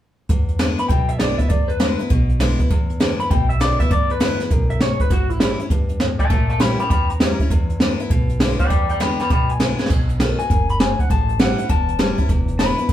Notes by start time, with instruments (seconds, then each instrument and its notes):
0.29 upright bass E2, steel-string acoustic guitar E2, kick, closed hi-hat
0.49 closed hi-hat
0.59 steel-string acoustic guitar D3 G#3 B3 E4, snare, closed hi-hat
0.78 steel-string acoustic guitar B3 E4, clean electric guitar B5, closed hi-hat
0.89 upright bass B1, steel-string acoustic guitar B2, clean electric guitar G5, kick, closed hi-hat
1.09 clean electric guitar E5, closed hi-hat
1.19 steel-string acoustic guitar D3 G#3 B3 E4, clean electric guitar D5, snare, closed hi-hat
1.38 steel-string acoustic guitar B3 E4, clean electric guitar E5, kick, closed hi-hat
1.49 steel-string acoustic guitar E2, upright bass E2, clean electric guitar D5, kick, closed hi-hat
1.68 clean electric guitar B4, closed hi-hat
1.80 steel-string acoustic guitar D3 G#3 B3 E4, snare, closed hi-hat
1.99 steel-string acoustic guitar B3 E4, closed hi-hat
2.10 upright bass B1, steel-string acoustic guitar B2, kick, closed hi-hat
2.29 closed hi-hat
2.40 steel-string acoustic guitar D3 G#3 B3 E4, snare, closed hi-hat
2.59 steel-string acoustic guitar B3 E4, kick, closed hi-hat
2.71 upright bass E2, steel-string acoustic guitar E2, kick, closed hi-hat
2.90 closed hi-hat
3.00 steel-string acoustic guitar D3 G#3 B3 E4, snare, closed hi-hat
3.20 steel-string acoustic guitar B3 E4, clean electric guitar B5, closed hi-hat
3.31 upright bass B1, steel-string acoustic guitar B2, clean electric guitar G5, kick, closed hi-hat
3.49 clean electric guitar E5, closed hi-hat
3.60 steel-string acoustic guitar D3 G#3 B3 E4, clean electric guitar D5, snare, closed hi-hat
3.80 steel-string acoustic guitar B3 E4, clean electric guitar E5, kick, closed hi-hat
3.91 steel-string acoustic guitar E2, upright bass E2, clean electric guitar D5, kick, closed hi-hat
4.10 clean electric guitar B4, closed hi-hat
4.20 steel-string acoustic guitar D3 G#3 B3 E4, snare, closed hi-hat
4.40 steel-string acoustic guitar B3 E4, snare, closed hi-hat
4.50 upright bass B1, steel-string acoustic guitar F#2, kick, closed hi-hat
4.70 clean electric guitar E5, closed hi-hat
4.80 steel-string acoustic guitar G#2, clean electric guitar C#5, snare, closed hi-hat
5.00 clean electric guitar B4, kick, closed hi-hat
5.10 upright bass A1, steel-string acoustic guitar A2, clean electric guitar F#4, kick, closed hi-hat
5.30 clean electric guitar E4, closed hi-hat
5.40 steel-string acoustic guitar E3 G3 C#4 E4, clean electric guitar E4, snare, closed hi-hat
5.59 steel-string acoustic guitar C#4 E4, closed hi-hat
5.70 upright bass E2, steel-string acoustic guitar G2, kick, closed hi-hat
5.89 closed hi-hat
6.00 steel-string acoustic guitar A2, snare, closed hi-hat
6.19 clean electric guitar E5 A5, kick, closed hi-hat
6.30 upright bass A#1, steel-string acoustic guitar A#2, clean electric guitar E5 A5, kick, closed hi-hat
6.50 clean electric guitar E5 A5, closed hi-hat
6.60 steel-string acoustic guitar E3 G3 C#4 E4, clean electric guitar G5 B5, snare, closed hi-hat
6.79 steel-string acoustic guitar C#4 E4, clean electric guitar G5 B5, closed hi-hat
6.90 upright bass E2, steel-string acoustic guitar E3, clean electric guitar G5 B5, kick, closed hi-hat
7.10 clean electric guitar A#5, closed hi-hat
7.20 steel-string acoustic guitar E3 G3 C#4 E4, snare, closed hi-hat
7.40 steel-string acoustic guitar C#4 E4, kick, closed hi-hat
7.50 upright bass E2, steel-string acoustic guitar E2, kick, closed hi-hat
7.70 closed hi-hat
7.80 steel-string acoustic guitar D3 G#3 B3 E4, snare, closed hi-hat
7.99 steel-string acoustic guitar B3 E4, closed hi-hat
8.10 upright bass B1, steel-string acoustic guitar B2, kick, closed hi-hat
8.29 closed hi-hat
8.40 steel-string acoustic guitar D3 G#3 B3 E4, snare, closed hi-hat
8.59 steel-string acoustic guitar B3 E4, clean electric guitar D5 G5, kick, closed hi-hat
8.70 upright bass E2, steel-string acoustic guitar E2, clean electric guitar D5 G5, kick, closed hi-hat
8.89 clean electric guitar D5 G5, closed hi-hat
9.00 steel-string acoustic guitar D3 G#3 B3 E4, clean electric guitar G5 B5, snare, closed hi-hat
9.19 steel-string acoustic guitar B3 E4, clean electric guitar G5 B5, snare, closed hi-hat
9.30 upright bass B1, steel-string acoustic guitar B2, clean electric guitar G5 B5, kick, closed hi-hat
9.49 clean electric guitar G#5, closed hi-hat
9.60 steel-string acoustic guitar D3 G#3 B3 E4, snare, closed hi-hat
9.79 steel-string acoustic guitar B3 E4, snare
9.86 snare, closed hi-hat, splash
9.90 upright bass B1, steel-string acoustic guitar B2, kick
10.09 closed hi-hat
10.20 steel-string acoustic guitar D#3 A3 B3 F#4, snare, closed hi-hat
10.39 steel-string acoustic guitar B3 F#4, clean electric guitar G#5, closed hi-hat
10.50 upright bass F#1, steel-string acoustic guitar F#2, kick, closed hi-hat
10.69 clean electric guitar B5, closed hi-hat
10.80 steel-string acoustic guitar G#2, clean electric guitar G#5, snare, closed hi-hat
10.99 clean electric guitar F#5, kick, closed hi-hat
11.10 upright bass A1, steel-string acoustic guitar A2, clean electric guitar A5, kick, closed hi-hat
11.29 closed hi-hat
11.39 steel-string acoustic guitar E3 G3 C#4 E4, clean electric guitar F#5, snare, closed hi-hat
11.58 steel-string acoustic guitar C#4 E4, closed hi-hat
11.69 upright bass E1, steel-string acoustic guitar E2, clean electric guitar A5, kick, closed hi-hat
11.89 closed hi-hat
11.99 steel-string acoustic guitar E3 G3 C#4 E4, snare, closed hi-hat
12.18 steel-string acoustic guitar C#4 E4, kick, closed hi-hat
12.29 upright bass E1, steel-string acoustic guitar E2, kick, closed hi-hat
12.48 closed hi-hat
12.59 steel-string acoustic guitar D3 G#3 B3 E4, clean electric guitar B5, snare, closed hi-hat
12.78 steel-string acoustic guitar B3 E4, closed hi-hat
12.89 upright bass A1, steel-string acoustic guitar A2, kick, closed hi-hat